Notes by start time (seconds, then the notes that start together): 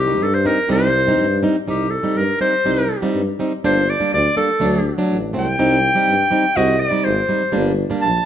Already playing: C2 G4
0.07 G3 C4 D#4
0.20 G2 A4
0.34 C5
0.45 G3 C4 D#4 A#4
0.69 C2 G3 C4 D#4 C5
1.07 G3 C4 D#4
1.20 G2
1.43 G3 C4 D#4
1.67 C2 G3 C4 D#4 G4
1.90 A4
2.03 G3 C4 D#4
2.16 G2 A#4
2.40 G3 C4 D#4 C5
2.65 C2 G3 C4 D#4
3.02 G3 C4 D#4
3.14 G2
3.39 G3 C4 D#4
3.64 G1 G3 A#3 D4 C5
3.90 D5
4.00 G3 A#3 D4
4.13 D2 D5
4.37 G3 A#3 D4 A4
4.60 D2 F#3 A3 D4
4.98 F#3 A3 D4
5.11 A1
5.33 C2 F#3 A3 C4
5.38 G5
5.59 C2 G3 C4 D#4
5.95 G3 C4 D#4
6.08 G2
6.31 G3 C4 D#4
6.56 C2 G3 C4 F#4 D#5
6.80 D5
6.91 G3 C4 D#4
7.04 G#1 C5
7.29 G3 C4 D#4
7.52 G1 G3 A#3 D4
7.90 G3 A#3 D4
8.02 A#1 A5